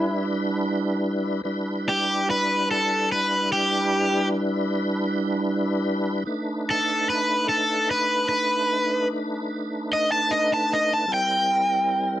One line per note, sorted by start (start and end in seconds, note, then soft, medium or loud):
0.00 1.41 G3 medium
0.00 1.42 D4 medium
0.00 0.24 E4 medium
0.00 1.41 E4 medium
0.00 1.42 B4 medium
1.44 6.24 G3 medium
1.44 6.24 D4 medium
1.44 6.24 E4 medium
1.44 6.23 B4 medium
1.89 2.27 G4 medium
2.30 2.67 B4 medium
2.71 3.08 A4 medium
3.12 3.48 B4 medium
3.52 4.28 G4 medium
6.25 11.06 A3 medium
6.25 11.06 D4 medium
6.25 11.05 D#4 medium
6.25 11.06 B4 medium
6.71 7.08 A4 medium
7.10 7.48 B4 medium
7.49 7.88 A4 medium
7.91 8.28 B4 medium
8.29 9.07 B4 medium
9.93 10.11 D#5 medium
10.12 10.31 A5 medium
10.31 10.50 D#5 medium
10.54 10.72 A5 medium
10.73 10.92 D#5 medium
10.94 11.12 A5 medium
11.08 12.20 G3 medium
11.08 12.20 C4 medium
11.08 12.20 E4 medium
11.08 12.20 A#4 medium
11.14 12.20 G5 medium